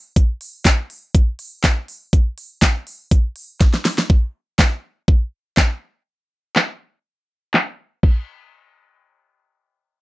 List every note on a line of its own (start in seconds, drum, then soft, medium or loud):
0.16 kick loud
0.16 closed hi-hat medium
0.41 open hi-hat medium
0.65 kick loud
0.65 snare medium
0.65 clap loud
0.65 closed hi-hat medium
0.90 open hi-hat medium
1.15 kick loud
1.15 closed hi-hat medium
1.39 open hi-hat medium
1.64 kick loud
1.64 snare medium
1.64 clap loud
1.64 closed hi-hat medium
1.88 open hi-hat medium
2.13 kick loud
2.13 closed hi-hat medium
2.38 open hi-hat medium
2.62 kick loud
2.62 snare medium
2.62 clap loud
2.62 closed hi-hat medium
2.87 open hi-hat medium
3.11 kick loud
3.11 closed hi-hat medium
3.36 open hi-hat medium
3.61 kick loud
3.61 snare medium
3.61 closed hi-hat medium
3.74 snare medium
3.85 snare medium
3.85 open hi-hat medium
3.98 snare medium
4.10 kick loud
4.59 kick loud
4.59 snare medium
4.59 clap loud
5.08 kick loud
5.57 kick loud
5.57 snare medium
5.57 clap loud
6.56 snare medium
6.56 clap loud
7.54 snare medium
7.54 clap loud
8.03 kick loud
8.03 crash medium